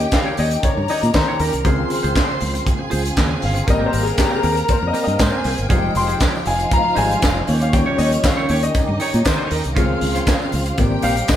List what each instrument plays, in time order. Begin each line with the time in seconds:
Already playing: tonewheel organ D#3 C#4 G4, string section G4 G5, grand piano D#5
0.00 muted clean electric guitar stroke, closed hi-hat
0.12 grand piano F5, muted clean electric guitar stroke, kick, snare, clap, closed hi-hat
0.26 clean electric guitar D#4 G4 C#5
0.37 fingered electric bass D#2, clean electric guitar D#4 G4 C#5, grand piano D#5, open hi-hat
0.51 muted clean electric guitar stroke, closed hi-hat
0.63 string section A#4 A#5, grand piano C#5, muted clean electric guitar stroke, kick, closed hi-hat
0.77 fingered electric bass G2, muted clean electric guitar stroke
0.88 clean electric guitar D#4 G4 C#5, grand piano D#5, open hi-hat
1.03 fingered electric bass A#2, muted clean electric guitar stroke, closed hi-hat
1.14 fingered electric bass D#3, grand piano C5, muted clean electric guitar stroke, kick, snare, clap, closed hi-hat
1.28 clean electric guitar D#4 G4 C#5
1.40 fingered electric bass D#2, clean electric guitar D#4 G4 D#5, grand piano A#4, open hi-hat
1.53 fingered electric bass C2, muted clean electric guitar stroke, closed hi-hat
1.64 fingered electric bass C#2, tonewheel organ C#3 C4 F4, grand piano D#3 F3 C4 G#4, clean electric guitar F4 G#4 C5, string section C5 C6, kick, closed hi-hat
1.90 muted clean electric guitar stroke, open hi-hat
2.03 fingered electric bass C#2, clean electric guitar F4 G#4 C5, closed hi-hat
2.15 muted clean electric guitar stroke, kick, snare, clap, closed hi-hat
2.29 muted clean electric guitar stroke
2.41 fingered electric bass C#2, open hi-hat
2.54 muted clean electric guitar stroke, closed hi-hat
2.65 string section G#4 G#5, kick, closed hi-hat
2.79 muted clean electric guitar stroke
2.90 fingered electric bass C#2, clean electric guitar F4 G#4 C5, open hi-hat
3.04 muted clean electric guitar stroke, closed hi-hat
3.16 fingered electric bass D#2, muted clean electric guitar stroke, kick, snare, clap, closed hi-hat
3.29 muted clean electric guitar stroke
3.42 fingered electric bass G1, grand piano F5, open hi-hat
3.55 muted clean electric guitar stroke, closed hi-hat
3.66 fingered electric bass G#1, grand piano G3 A#3 C4 D#5, tonewheel organ A#3 A#4, string section A#4 A#5, muted clean electric guitar stroke, kick, closed hi-hat, tambourine
3.79 clean electric guitar C4 G4 A#4
3.86 grand piano C5
3.91 fingered electric bass G#1, clean electric guitar C4 G4 A#4, open hi-hat, tambourine
4.03 grand piano G#4, muted clean electric guitar stroke
4.07 closed hi-hat
4.17 grand piano G4, muted clean electric guitar stroke, kick, snare, clap, closed hi-hat, tambourine
4.31 clean electric guitar C4 G4 A#4, tambourine
4.36 grand piano G#4
4.43 fingered electric bass D#2, clean electric guitar C4 G4 A#4, open hi-hat, tambourine
4.52 grand piano A#4
4.57 muted clean electric guitar stroke, closed hi-hat, tambourine
4.69 grand piano C5, muted clean electric guitar stroke, kick, closed hi-hat, tambourine
4.82 fingered electric bass F2, muted clean electric guitar stroke
4.87 grand piano D#5
4.93 clean electric guitar C4 G4 A#4, open hi-hat, tambourine
5.04 fingered electric bass G2, grand piano D#5, muted clean electric guitar stroke
5.08 closed hi-hat, tambourine
5.19 fingered electric bass G#2, string section G#4 G#5, grand piano C5, muted clean electric guitar stroke, kick, snare, clap, closed hi-hat, tambourine
5.32 clean electric guitar C4 G4 A#4
5.44 fingered electric bass C2, clean electric guitar C4 G4 C5, open hi-hat, tambourine
5.57 fingered electric bass G1, muted clean electric guitar stroke, closed hi-hat
5.69 fingered electric bass F1, tonewheel organ F3 D#4 F4, grand piano G3 G#3 D#4, clean electric guitar D#4 G#4 C5, string section G4 G5, kick, closed hi-hat, tambourine
5.95 fingered electric bass F1, grand piano C6, muted clean electric guitar stroke, open hi-hat, tambourine
6.07 clean electric guitar D#4 G#4 C5, closed hi-hat, tambourine
6.20 muted clean electric guitar stroke, kick, snare, clap, closed hi-hat, tambourine
6.33 muted clean electric guitar stroke, tambourine
6.46 fingered electric bass F1, string section F4 F5, grand piano G#5, open hi-hat, tambourine
6.59 muted clean electric guitar stroke, closed hi-hat
6.71 grand piano A#5, kick, closed hi-hat, tambourine
6.84 muted clean electric guitar stroke
6.95 fingered electric bass G#1, grand piano G3 G#3 D#4 G#5, clean electric guitar D#4 G#4 C5, open hi-hat, tambourine
7.10 muted clean electric guitar stroke, closed hi-hat
7.21 fingered electric bass F1, muted clean electric guitar stroke, kick, snare, clap, closed hi-hat, tambourine
7.35 muted clean electric guitar stroke
7.47 fingered electric bass D#2, tonewheel organ D#3 C#4 G4, string section C#4 C#5, open hi-hat, tambourine
7.60 grand piano F5, muted clean electric guitar stroke, closed hi-hat
7.73 grand piano F3 G3 C#4 G5, muted clean electric guitar stroke, kick, closed hi-hat, tambourine
7.86 clean electric guitar D#4 G4 C#5
7.98 fingered electric bass D#2, clean electric guitar D#4 G4 C#5, grand piano D#5, open hi-hat, tambourine
8.12 muted clean electric guitar stroke, closed hi-hat, tambourine
8.23 grand piano F5, muted clean electric guitar stroke, kick, snare, clap, closed hi-hat, tambourine
8.37 clean electric guitar D#4 G4 C#5, tambourine
8.49 fingered electric bass D#2, clean electric guitar D#4 G4 C#5, open hi-hat, tambourine
8.63 grand piano D#5, muted clean electric guitar stroke, closed hi-hat, tambourine
8.74 string section D#4 D#5, muted clean electric guitar stroke, kick, closed hi-hat, tambourine
8.88 fingered electric bass G2, muted clean electric guitar stroke
9.00 clean electric guitar D#4 G4 C#5, grand piano C#5, open hi-hat, tambourine
9.13 fingered electric bass A#2, muted clean electric guitar stroke, closed hi-hat, tambourine
9.25 fingered electric bass D#3, grand piano C5, muted clean electric guitar stroke, kick, snare, clap, closed hi-hat, tambourine
9.38 clean electric guitar D#4 G4 C#5
9.50 fingered electric bass D#2, clean electric guitar D#4 G4 D#5, grand piano A#4, open hi-hat, tambourine
9.64 fingered electric bass C2, muted clean electric guitar stroke, closed hi-hat
9.75 fingered electric bass C#2, tonewheel organ C#3 C4 F4, grand piano D#3 F3 C4 G#4, clean electric guitar C#4 F4 C5, string section F4 F5, kick, closed hi-hat, tambourine
10.01 fingered electric bass C#2, muted clean electric guitar stroke, open hi-hat, tambourine
10.15 clean electric guitar C#4 F4 C5, closed hi-hat, tambourine
10.27 muted clean electric guitar stroke, kick, snare, clap, closed hi-hat, tambourine
10.41 muted clean electric guitar stroke, tambourine
10.52 fingered electric bass C#2, open hi-hat, tambourine
10.66 muted clean electric guitar stroke, closed hi-hat
10.77 fingered electric bass G#1, grand piano C3 G3 A#3, tonewheel organ G3 C4 G4, string section G4 G5, kick, closed hi-hat, tambourine
10.92 muted clean electric guitar stroke
11.02 fingered electric bass A#1, clean electric guitar D#4 G4 C5, grand piano F5, open hi-hat, tambourine
11.16 muted clean electric guitar stroke, closed hi-hat
11.28 fingered electric bass G#1, grand piano D#5, kick, snare, clap, closed hi-hat, tambourine